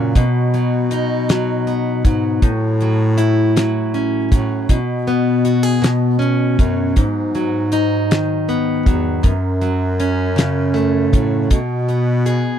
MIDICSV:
0, 0, Header, 1, 4, 480
1, 0, Start_track
1, 0, Tempo, 756620
1, 100, Time_signature, 6, 3, 24, 8
1, 7986, End_track
2, 0, Start_track
2, 0, Title_t, "Steel-string acoustic guitar"
2, 0, Program_c, 0, 25
2, 0, Note_on_c, 0, 42, 82
2, 0, Note_on_c, 0, 49, 66
2, 0, Note_on_c, 0, 54, 54
2, 0, Note_on_c, 0, 58, 51
2, 0, Note_on_c, 0, 61, 62
2, 99, Note_off_c, 0, 49, 0
2, 101, Note_on_c, 0, 47, 78
2, 105, Note_off_c, 0, 42, 0
2, 151, Note_off_c, 0, 58, 0
2, 152, Note_off_c, 0, 61, 0
2, 341, Note_off_c, 0, 54, 0
2, 344, Note_on_c, 0, 54, 59
2, 584, Note_on_c, 0, 63, 64
2, 824, Note_off_c, 0, 54, 0
2, 826, Note_on_c, 0, 54, 58
2, 1060, Note_on_c, 0, 59, 57
2, 1296, Note_off_c, 0, 54, 0
2, 1298, Note_on_c, 0, 54, 55
2, 1539, Note_on_c, 0, 45, 89
2, 1540, Note_off_c, 0, 47, 0
2, 1587, Note_off_c, 0, 59, 0
2, 1589, Note_off_c, 0, 63, 0
2, 1786, Note_off_c, 0, 54, 0
2, 1788, Note_on_c, 0, 54, 56
2, 2015, Note_on_c, 0, 64, 63
2, 2252, Note_off_c, 0, 54, 0
2, 2260, Note_on_c, 0, 54, 66
2, 2501, Note_on_c, 0, 61, 57
2, 2730, Note_off_c, 0, 54, 0
2, 2738, Note_on_c, 0, 54, 60
2, 2979, Note_off_c, 0, 45, 0
2, 2981, Note_on_c, 0, 47, 78
2, 3025, Note_off_c, 0, 64, 0
2, 3027, Note_off_c, 0, 54, 0
2, 3028, Note_off_c, 0, 61, 0
2, 3220, Note_on_c, 0, 59, 58
2, 3456, Note_on_c, 0, 66, 58
2, 3572, Note_off_c, 0, 66, 0
2, 3572, Note_on_c, 0, 68, 55
2, 3683, Note_off_c, 0, 47, 0
2, 3691, Note_on_c, 0, 47, 76
2, 3744, Note_off_c, 0, 68, 0
2, 3924, Note_off_c, 0, 59, 0
2, 3926, Note_on_c, 0, 61, 58
2, 4179, Note_on_c, 0, 54, 52
2, 4415, Note_off_c, 0, 47, 0
2, 4420, Note_on_c, 0, 44, 77
2, 4461, Note_off_c, 0, 61, 0
2, 4661, Note_off_c, 0, 54, 0
2, 4663, Note_on_c, 0, 54, 53
2, 4901, Note_on_c, 0, 63, 59
2, 5147, Note_on_c, 0, 51, 63
2, 5384, Note_on_c, 0, 59, 54
2, 5626, Note_off_c, 0, 54, 0
2, 5628, Note_on_c, 0, 54, 50
2, 5854, Note_off_c, 0, 44, 0
2, 5857, Note_on_c, 0, 42, 86
2, 5909, Note_off_c, 0, 63, 0
2, 5910, Note_off_c, 0, 59, 0
2, 5912, Note_off_c, 0, 51, 0
2, 6097, Note_off_c, 0, 54, 0
2, 6100, Note_on_c, 0, 54, 55
2, 6345, Note_on_c, 0, 61, 59
2, 6573, Note_on_c, 0, 49, 67
2, 6814, Note_on_c, 0, 57, 57
2, 7051, Note_off_c, 0, 54, 0
2, 7059, Note_on_c, 0, 54, 56
2, 7296, Note_off_c, 0, 49, 0
2, 7298, Note_off_c, 0, 42, 0
2, 7300, Note_on_c, 0, 47, 83
2, 7344, Note_off_c, 0, 57, 0
2, 7347, Note_off_c, 0, 54, 0
2, 7350, Note_off_c, 0, 61, 0
2, 7540, Note_on_c, 0, 59, 59
2, 7777, Note_on_c, 0, 68, 62
2, 7986, Note_off_c, 0, 47, 0
2, 7986, Note_off_c, 0, 59, 0
2, 7986, Note_off_c, 0, 68, 0
2, 7986, End_track
3, 0, Start_track
3, 0, Title_t, "Bass clarinet"
3, 0, Program_c, 1, 71
3, 0, Note_on_c, 1, 46, 85
3, 85, Note_off_c, 1, 46, 0
3, 99, Note_on_c, 1, 47, 106
3, 1273, Note_off_c, 1, 47, 0
3, 1297, Note_on_c, 1, 44, 88
3, 1524, Note_off_c, 1, 44, 0
3, 1536, Note_on_c, 1, 45, 106
3, 2541, Note_off_c, 1, 45, 0
3, 2738, Note_on_c, 1, 45, 89
3, 2964, Note_off_c, 1, 45, 0
3, 2977, Note_on_c, 1, 47, 97
3, 3673, Note_off_c, 1, 47, 0
3, 3696, Note_on_c, 1, 47, 78
3, 4153, Note_off_c, 1, 47, 0
3, 4180, Note_on_c, 1, 42, 93
3, 4406, Note_off_c, 1, 42, 0
3, 4421, Note_on_c, 1, 44, 93
3, 5423, Note_off_c, 1, 44, 0
3, 5622, Note_on_c, 1, 40, 86
3, 5847, Note_off_c, 1, 40, 0
3, 5861, Note_on_c, 1, 42, 96
3, 7063, Note_on_c, 1, 45, 87
3, 7072, Note_off_c, 1, 42, 0
3, 7286, Note_off_c, 1, 45, 0
3, 7301, Note_on_c, 1, 47, 109
3, 7986, Note_off_c, 1, 47, 0
3, 7986, End_track
4, 0, Start_track
4, 0, Title_t, "Drums"
4, 98, Note_on_c, 9, 36, 96
4, 98, Note_on_c, 9, 42, 74
4, 161, Note_off_c, 9, 42, 0
4, 162, Note_off_c, 9, 36, 0
4, 341, Note_on_c, 9, 42, 48
4, 405, Note_off_c, 9, 42, 0
4, 577, Note_on_c, 9, 42, 71
4, 640, Note_off_c, 9, 42, 0
4, 819, Note_on_c, 9, 42, 75
4, 824, Note_on_c, 9, 38, 108
4, 883, Note_off_c, 9, 42, 0
4, 888, Note_off_c, 9, 38, 0
4, 1062, Note_on_c, 9, 42, 39
4, 1125, Note_off_c, 9, 42, 0
4, 1299, Note_on_c, 9, 36, 97
4, 1299, Note_on_c, 9, 42, 69
4, 1362, Note_off_c, 9, 36, 0
4, 1363, Note_off_c, 9, 42, 0
4, 1537, Note_on_c, 9, 36, 96
4, 1537, Note_on_c, 9, 42, 68
4, 1600, Note_off_c, 9, 42, 0
4, 1601, Note_off_c, 9, 36, 0
4, 1779, Note_on_c, 9, 42, 44
4, 1843, Note_off_c, 9, 42, 0
4, 2015, Note_on_c, 9, 42, 67
4, 2078, Note_off_c, 9, 42, 0
4, 2263, Note_on_c, 9, 42, 78
4, 2267, Note_on_c, 9, 38, 102
4, 2326, Note_off_c, 9, 42, 0
4, 2331, Note_off_c, 9, 38, 0
4, 2502, Note_on_c, 9, 42, 41
4, 2565, Note_off_c, 9, 42, 0
4, 2739, Note_on_c, 9, 36, 95
4, 2742, Note_on_c, 9, 42, 68
4, 2803, Note_off_c, 9, 36, 0
4, 2806, Note_off_c, 9, 42, 0
4, 2977, Note_on_c, 9, 36, 93
4, 2977, Note_on_c, 9, 42, 75
4, 3040, Note_off_c, 9, 42, 0
4, 3041, Note_off_c, 9, 36, 0
4, 3219, Note_on_c, 9, 42, 43
4, 3282, Note_off_c, 9, 42, 0
4, 3456, Note_on_c, 9, 42, 66
4, 3519, Note_off_c, 9, 42, 0
4, 3702, Note_on_c, 9, 42, 80
4, 3707, Note_on_c, 9, 38, 107
4, 3766, Note_off_c, 9, 42, 0
4, 3771, Note_off_c, 9, 38, 0
4, 3944, Note_on_c, 9, 42, 43
4, 4007, Note_off_c, 9, 42, 0
4, 4181, Note_on_c, 9, 36, 97
4, 4184, Note_on_c, 9, 42, 71
4, 4244, Note_off_c, 9, 36, 0
4, 4247, Note_off_c, 9, 42, 0
4, 4417, Note_on_c, 9, 42, 66
4, 4420, Note_on_c, 9, 36, 98
4, 4480, Note_off_c, 9, 42, 0
4, 4483, Note_off_c, 9, 36, 0
4, 4661, Note_on_c, 9, 42, 45
4, 4724, Note_off_c, 9, 42, 0
4, 4896, Note_on_c, 9, 42, 69
4, 4960, Note_off_c, 9, 42, 0
4, 5146, Note_on_c, 9, 42, 80
4, 5151, Note_on_c, 9, 38, 109
4, 5209, Note_off_c, 9, 42, 0
4, 5214, Note_off_c, 9, 38, 0
4, 5387, Note_on_c, 9, 42, 41
4, 5451, Note_off_c, 9, 42, 0
4, 5623, Note_on_c, 9, 36, 94
4, 5625, Note_on_c, 9, 42, 71
4, 5687, Note_off_c, 9, 36, 0
4, 5689, Note_off_c, 9, 42, 0
4, 5859, Note_on_c, 9, 42, 75
4, 5862, Note_on_c, 9, 36, 99
4, 5923, Note_off_c, 9, 42, 0
4, 5925, Note_off_c, 9, 36, 0
4, 6100, Note_on_c, 9, 42, 49
4, 6163, Note_off_c, 9, 42, 0
4, 6342, Note_on_c, 9, 42, 74
4, 6405, Note_off_c, 9, 42, 0
4, 6585, Note_on_c, 9, 42, 72
4, 6590, Note_on_c, 9, 38, 103
4, 6649, Note_off_c, 9, 42, 0
4, 6653, Note_off_c, 9, 38, 0
4, 6827, Note_on_c, 9, 42, 45
4, 6890, Note_off_c, 9, 42, 0
4, 7063, Note_on_c, 9, 36, 87
4, 7065, Note_on_c, 9, 42, 73
4, 7126, Note_off_c, 9, 36, 0
4, 7128, Note_off_c, 9, 42, 0
4, 7299, Note_on_c, 9, 42, 75
4, 7301, Note_on_c, 9, 36, 86
4, 7362, Note_off_c, 9, 42, 0
4, 7364, Note_off_c, 9, 36, 0
4, 7542, Note_on_c, 9, 42, 41
4, 7606, Note_off_c, 9, 42, 0
4, 7777, Note_on_c, 9, 42, 65
4, 7840, Note_off_c, 9, 42, 0
4, 7986, End_track
0, 0, End_of_file